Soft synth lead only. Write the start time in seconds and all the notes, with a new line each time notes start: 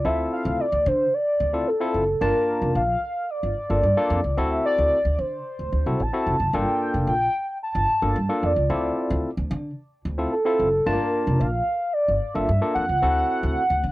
0.06 E5
0.33 F5
0.60 D5
0.87 C5
1.14 D5
1.67 A4
2.22 A#4
2.76 F5
3.30 D5
4.39 E5
4.65 D5
5.19 C5
6.01 A5
6.54 G5
7.08 G5
7.63 A5
8.43 D5
10.32 A4
10.86 A#4
11.39 F5
11.93 D5
12.34 E5
12.75 F#5